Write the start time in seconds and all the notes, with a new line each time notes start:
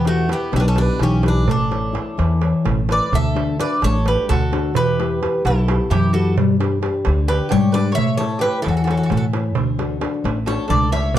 Already playing: E2 E3
0.05 A3 E4 F#4 G4 B4, darbuka tek
0.18 darbuka tek
0.28 E4 G4 B4, darbuka tek
0.33 B3
0.52 B1 B2, darbuka tek
0.56 C#4 D4 G4 B4
0.68 C#4 A4
0.76 D4 E4 G4 B4, darbuka tek
0.81 B4
0.99 B1 E3 C#4 G4, darbuka tek
1.12 darbuka tek
1.23 E4 G4 B4, darbuka tek
1.28 D4
1.47 A1 A3 D4 A4, darbuka dum
1.71 E4 A4 C#5, darbuka tek
1.93 E4 A4 C#5, darbuka tek
2.18 E2 E3, darbuka tek
2.41 E4 A4 C#5, darbuka tek
2.65 A1 A3, darbuka tek, darbuka dum
2.77 darbuka tek
2.88 E4 A4 B4 C#5 D5, darbuka tek
3.12 D2 D3 A4 E5, darbuka dum
3.25 darbuka tek
3.35 D4 F#4 A4, darbuka tek
3.59 D4 F#4 A4 B4 D5, darbuka tek
3.72 darbuka tek
3.82 A1 A3 A4 C#5, darbuka tek
4.06 D4 F#4 G4 A4 B4, darbuka tek
4.17 darbuka tek
4.29 D2 D3 F#4 A4, darbuka tek, darbuka dum
4.52 D4 F#4 A4, darbuka tek
4.74 E2 E3 G4 B4, darbuka dum
4.88 darbuka tek
4.99 E4 G4 B4, darbuka tek
5.22 E4 G4 B4, darbuka tek
5.34 darbuka tek
5.45 B1 B2 E4 A4, darbuka tek
5.68 E4 G4 B4, darbuka tek
5.80 darbuka tek
5.90 F#2 E3 E4 G4, darbuka tek, darbuka dum
6.13 E4 F#4 G4 A4 B4
6.37 G2 G3, darbuka dum
6.49 darbuka tek
6.59 D4 G4 B4, darbuka tek
6.82 D4 G4 B4, darbuka tek
6.94 darbuka tek
7.05 D2 D3, darbuka tek
7.28 D4 G4 B4, darbuka tek
7.40 darbuka tek
7.49 G#2 G3 G4 C#5, darbuka tek, darbuka dum
7.72 D4 G4 B4 D5, darbuka tek
7.92 C#5 E5
7.98 A2 A3, darbuka dum
8.17 E4 A4 C#5, darbuka tek
8.22 A4 C#5
8.39 G4 B4, darbuka tek
8.43 E4 A4 C#5
8.54 darbuka tek
8.62 E2 E4 A4, darbuka tek
8.67 E3 F#4 A4
8.77 F#4 A4
8.84 F#4 A4, darbuka tek
8.89 E4 F#4 A4 C#5
8.97 F#4 A4
9.03 F#4 A4
9.10 A2 A3 F#4 A4, darbuka tek, darbuka dum
9.17 F#4 A4
9.22 darbuka tek
9.33 E4 A4 C#5, darbuka tek
9.55 D2 D3, darbuka dum
9.67 darbuka tek
9.78 D4 F#4 A4, darbuka tek
10.01 D4 F#4 A4, darbuka tek
10.14 darbuka tek
10.24 A1 A3, darbuka tek
10.46 D4 F#4 A4 C#5, darbuka tek
10.59 darbuka tek
10.68 C#2 D4 A4 D5, darbuka tek, darbuka dum
10.92 D4 F#4 A4 C#5 E5, darbuka tek
11.14 B1 B2 D5, darbuka dum